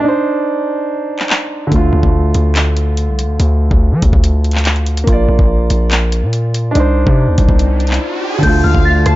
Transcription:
0.00 1.66 D4 medium
0.04 1.68 D#4 medium
0.08 1.71 C5 medium
1.19 clap medium
1.30 clap loud
1.67 5.01 D3 medium
1.71 1.92 D2 loud
1.71 5.03 A3 medium
1.71 kick loud
1.71 closed hi-hat medium
1.76 5.05 F4 medium
1.93 2.03 D2 loud
2.03 2.33 D2 loud
2.03 kick medium
2.34 3.10 D2 loud
2.34 closed hi-hat medium
2.56 clap loud
2.56 closed hi-hat medium
2.77 closed hi-hat medium
2.97 closed hi-hat medium
3.08 3.25 C2 loud
3.19 closed hi-hat medium
3.24 3.39 D2 loud
3.40 3.70 D2 loud
3.40 closed hi-hat medium
3.71 3.94 D2 loud
3.71 kick medium
3.92 4.02 F3 loud
4.02 4.12 D2 loud
4.02 kick loud
4.02 closed hi-hat medium
4.13 5.04 D2 loud
4.13 kick medium
4.24 closed hi-hat medium
4.44 closed hi-hat soft
4.51 clap medium
4.51 closed hi-hat medium
4.58 closed hi-hat medium
4.65 clap loud
4.65 closed hi-hat medium
4.76 closed hi-hat soft
4.86 closed hi-hat medium
4.97 closed hi-hat medium
5.04 5.28 A#1 loud
5.04 6.70 A#3 medium
5.04 kick loud
5.04 closed hi-hat medium
5.08 6.72 F4 medium
5.12 6.74 D5 medium
5.28 5.38 A#1 loud
5.39 5.69 A#1 loud
5.39 kick loud
5.70 6.24 A#1 loud
5.70 closed hi-hat medium
5.91 clap loud
5.91 closed hi-hat medium
6.12 closed hi-hat medium
6.23 6.73 A#2 loud
6.33 closed hi-hat medium
6.54 closed hi-hat medium
6.71 8.38 D4 medium
6.75 7.05 C2 loud
6.75 8.40 D#4 medium
6.75 closed hi-hat medium
6.75 riser medium
6.80 8.42 C5 medium
7.07 7.29 C3 loud
7.07 kick medium
7.28 7.38 D#2 medium
7.38 7.48 C2 loud
7.38 kick medium
7.38 closed hi-hat medium
7.49 7.99 C2 loud
7.49 kick medium
7.59 closed hi-hat medium
7.80 closed hi-hat soft
7.87 clap medium
7.87 closed hi-hat medium
7.94 closed hi-hat medium
8.38 9.16 D3 medium
8.43 8.63 D2 loud
8.43 9.16 D3 medium
8.43 9.16 A3 medium
8.43 9.16 F4 medium
8.43 9.16 A4 medium
8.43 9.16 D5 medium
8.43 8.62 G6 loud
8.43 kick loud
8.43 closed hi-hat medium
8.43 crash loud
8.47 9.16 F4 medium
8.64 8.74 D2 loud
8.64 9.04 F5 medium
8.64 8.83 F6 medium
8.75 9.05 D2 loud
8.75 kick loud
8.85 9.04 A6 medium
9.06 9.16 D2 loud
9.06 9.16 A5 medium
9.06 9.16 C7 medium
9.06 cross-stick loud
9.06 closed hi-hat medium

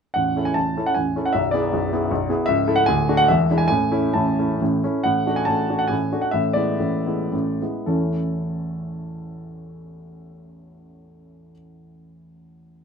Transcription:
0.14 0.35 A0 soft
0.14 0.35 A1 soft
0.14 0.45 F#5 medium
0.36 0.55 C#4 soft
0.36 0.55 E4 soft
0.36 0.55 A4 soft
0.45 0.56 G#5 medium
0.54 0.77 A0 soft
0.54 0.76 A1 soft
0.54 0.87 A5 medium
0.77 0.96 C#4 soft
0.77 0.96 E4 soft
0.77 0.96 A4 soft
0.86 0.97 F#5 medium
0.94 1.16 A0 soft
0.94 1.16 A1 soft
0.94 1.25 G#5 medium
1.16 1.33 C#4 soft
1.16 1.33 E4 soft
1.16 1.34 A4 soft
1.26 1.35 F#5 medium
1.33 1.53 B0 soft
1.33 1.53 B1 soft
1.33 1.52 E5 medium
1.51 1.71 B3 soft
1.51 1.71 E4 soft
1.51 1.71 G#4 soft
1.51 2.28 D5 medium
1.72 1.91 B0 soft
1.72 1.92 B1 soft
1.93 2.09 B3 soft
1.93 2.10 E4 soft
1.93 2.10 G#4 soft
2.11 2.29 B0 medium
2.11 2.29 B1 medium
2.29 2.46 B3 soft
2.29 2.46 E4 soft
2.29 2.46 G#4 soft
2.46 2.66 C#1 medium
2.46 2.66 C#2 medium
2.46 2.75 E5 medium
2.67 2.85 A3 medium
2.67 2.85 E4 medium
2.67 2.85 A4 medium
2.76 2.86 F#5 medium
2.86 3.08 D1 medium
2.86 3.08 D2 medium
2.86 3.17 G#5 medium
3.08 3.26 A3 soft
3.08 3.26 D4 soft
3.08 3.27 F#4 soft
3.17 3.28 F#5 medium
3.28 3.49 E1 medium
3.28 3.49 E2 medium
3.28 3.59 E5 medium
3.50 3.68 G#3 soft
3.50 3.68 D4 soft
3.50 3.68 E4 soft
3.58 3.66 G#5 medium
3.68 3.90 A1 soft
3.68 3.91 A2 soft
3.68 4.14 G#5 medium
3.91 4.12 A3 soft
3.91 4.12 C#4 soft
3.91 4.12 E4 soft
4.14 4.38 A1 soft
4.14 4.38 A2 soft
4.14 4.61 A5 medium
4.39 4.59 A3 soft
4.39 4.59 C#4 soft
4.39 4.59 E4 soft
4.62 4.83 A1 medium
4.62 4.83 A2 soft
4.83 5.03 A3 soft
4.83 5.03 C#4 soft
4.83 5.03 E4 soft
5.04 5.26 A1 soft
5.04 5.26 A2 soft
5.04 5.36 F#5 medium
5.26 5.46 A3 soft
5.26 5.46 D4 soft
5.26 5.47 F#4 soft
5.36 5.48 G#5 medium
5.45 5.69 A1 soft
5.45 5.69 A2 soft
5.45 5.80 A5 medium
5.69 5.89 A3 soft
5.69 5.89 D4 soft
5.69 5.90 F#4 soft
5.79 5.91 F#5 medium
5.88 6.11 A1 soft
5.88 6.11 A2 soft
5.88 6.21 G#5 medium
6.12 6.31 A3 soft
6.12 6.31 D4 soft
6.12 6.31 F#4 soft
6.22 6.33 F#5 medium
6.31 6.54 A1 soft
6.31 6.54 A2 soft
6.31 6.54 E5 medium
6.53 6.77 G#3 soft
6.53 6.77 B3 soft
6.53 6.78 E4 soft
6.53 7.61 D5 medium
6.80 7.05 A1 soft
6.80 7.05 A2 soft
7.06 7.30 G#3 soft
7.06 7.31 B3 soft
7.06 7.31 E4 soft
7.32 7.61 A1 soft
7.32 7.61 A2 soft
7.61 7.86 G#3 soft
7.61 7.86 B3 soft
7.61 7.86 E4 soft
7.86 11.51 A1 soft
7.86 11.51 E2 soft
7.86 11.51 E3 soft
7.86 11.52 A3 soft
7.86 11.52 C#4 soft
7.86 11.52 E4 soft
7.86 11.50 A4 soft

